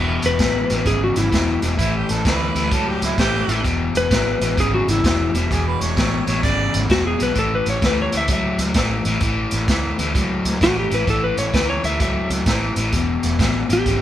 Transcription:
Already playing: E1 E2 B2
0.22 E1 B4, snare, closed hi-hat
0.39 A1 E2 B2, kick, snare, closed hi-hat
0.70 A1 E2 B2, snare, closed hi-hat
0.85 G#1 E2 C#3 G#4, kick, snare, closed hi-hat
1.04 F#4
1.16 G#1 E4, snare, closed hi-hat
1.32 E1 E2 B2, kick, snare, closed hi-hat
1.62 E1 E2 B2, snare, closed hi-hat
1.77 A1 A2 E3 E4, kick, snare, closed hi-hat
1.96 G4
2.09 A1 A4, snare, closed hi-hat
2.25 D2 A2 E3 B4, kick, snare, closed hi-hat
2.55 D2 A2 E3, snare, closed hi-hat
2.71 C#2 A2 F#3 A4, kick, snare, closed hi-hat
2.88 G4
3.02 C#2 E4, snare, closed hi-hat
3.18 A1 A2 E3 G4, kick, snare, closed hi-hat
3.48 A1 A2 E3, snare, closed hi-hat
3.64 E1 E2 B2, kick, snare, closed hi-hat
3.94 E1 B4, snare, closed hi-hat
4.10 A1 E2 B2, kick, snare, closed hi-hat
4.41 A1 E2 B2, snare, closed hi-hat
4.57 G#1 E2 C#3 G#4, kick, snare, closed hi-hat
4.74 F#4
4.87 G#1 E4, snare, closed hi-hat
5.04 E1 E2 B2, kick, snare, closed hi-hat
5.34 E1 E2 B2, snare, closed hi-hat
5.50 E1 E2 B2 G#4, kick, snare, closed hi-hat
5.67 B4
5.81 E1 C#5, snare, closed hi-hat
5.97 A1 E2 B2, kick, snare, closed hi-hat
6.26 A1 E2 B2 C#5, snare, closed hi-hat
6.43 G#1 E2 C#3 D5, kick, snare, closed hi-hat
6.74 G#1, snare, closed hi-hat
6.89 E1 E2 B2 F#4, kick, snare, closed hi-hat
7.07 G#4
7.18 B1 E2 B2, snare, closed hi-hat
7.23 B4
7.34 A1 A2 E3, kick, snare, closed hi-hat
7.39 A4
7.55 B4
7.66 A1 C#5, snare, closed hi-hat
7.82 D2 A2 E3, kick, snare, closed hi-hat
7.86 B4
8.02 C#5
8.12 D2 A2 E3, snare, closed hi-hat
8.17 E5
8.28 C#2 A2 F#3, kick, snare, closed hi-hat
8.33 E5
8.58 C#2, snare, closed hi-hat
8.74 A1 A2 E3, kick, snare, closed hi-hat
9.05 A1 A2 E3, snare, closed hi-hat
9.21 A1 A2 E3, kick, snare, closed hi-hat
9.51 A1, snare, closed hi-hat
9.68 D2 A2 E3, kick, snare, closed hi-hat
9.98 D2 A2 E3, snare, closed hi-hat
10.14 C#2 A2 F#3, kick, snare, closed hi-hat
10.45 C#2, snare, closed hi-hat
10.61 A1 A2 E3 F#4, kick, snare, closed hi-hat
10.79 G4
10.90 A1 A2 E3, snare, closed hi-hat
10.94 B4
11.07 A1 A2 E3 A4, kick, snare, closed hi-hat
11.24 B4
11.37 A1 C#5, snare, closed hi-hat
11.53 D2 A2 E3 B4, kick, snare, closed hi-hat
11.70 C#5
11.83 D2 A2 E3 E5, snare, closed hi-hat
11.99 C#2 A2 F#3 E5, kick, snare, closed hi-hat
12.30 C#2, snare, closed hi-hat
12.46 A1 A2 E3, kick, snare, closed hi-hat
12.76 A1 A2 E3, snare, closed hi-hat
12.93 E1 E2 B2, kick, snare, closed hi-hat
13.23 E1, snare, closed hi-hat
13.39 A1 E2 B2, kick, snare, closed hi-hat
13.69 A1 E2 B2 G4, snare, closed hi-hat
13.86 G#1 E2 C#3, kick, snare, closed hi-hat

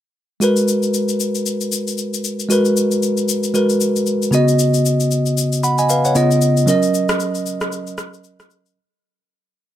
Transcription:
0.40 G#3 F#4 A#4 B4, shaker
0.56 shaker
0.68 shaker
0.83 shaker
0.94 shaker
1.09 shaker
1.20 shaker
1.35 shaker
1.46 shaker
1.61 shaker
1.72 shaker
1.88 shaker
1.98 shaker
2.14 shaker
2.24 shaker
2.40 shaker
2.49 G#3 F#4 A#4 B4, shaker
2.65 shaker
2.77 shaker
2.91 shaker
3.03 shaker
3.17 shaker
3.29 shaker
3.43 shaker
3.54 G#3 F#4 A#4 B4, shaker
3.69 shaker
3.81 shaker
3.96 shaker
4.07 shaker
4.22 shaker
4.31 C#3 B3 F#4 D#5, shaker
4.48 shaker
4.59 shaker
4.74 shaker
4.86 shaker
5.00 shaker
5.11 shaker
5.26 shaker
5.38 shaker
5.52 shaker
5.63 F#5 B5, shaker
5.78 D#5 G#5, shaker
5.89 B4 F5, shaker
6.05 C#5 F#5, shaker
6.15 C#3 B3 F4 D#5, shaker
6.31 shaker
6.42 shaker
6.57 shaker
6.66 F#3 C#4 A#4 D#5, shaker
6.83 shaker
6.94 shaker
7.09 cross-stick, shaker
7.20 shaker
7.35 shaker
7.46 shaker
7.61 cross-stick, shaker
7.72 shaker
7.87 shaker
7.98 cross-stick, shaker
8.14 shaker
8.24 shaker
8.40 cross-stick, shaker
8.50 shaker
8.66 shaker

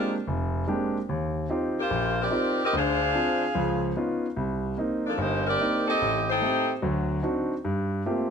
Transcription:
Already playing: G#3 A#3 C4 D4 F4 G4 A#4
0.27 F1
0.68 G#3 A#3 C4 D4 G4
1.09 D#2
1.49 C4 D#4 F4 G4
1.79 A#3 F4 G4 C5
1.90 A#1
2.21 C4 G4 A#4 D5
2.31 C4 D#4 F4 G4
2.64 C4 G4 A#4 D#5
2.73 D2 D3 D4 G#4 F5
2.77 C5
3.15 C4 D4 F4
3.55 C#2 F3
3.96 B3 C#4 D#4 F4
4.37 C2
4.77 A#3 C4 D#4
5.06 F3 A#3 D4 A4
5.18 G1 A#3 D#4 G4 C5
5.47 C4 G4 A#4 D5
5.60 A#3 C4 D#4
5.87 C4 G4 A4 D#5
6.01 A1
6.30 D#4 A4 C5 G5
6.42 A3 C4 G4
6.82 D2 F#3
7.23 C4 D4 D#4 F#4
7.65 G2
8.06 A3 A#3 C4 F4 G4

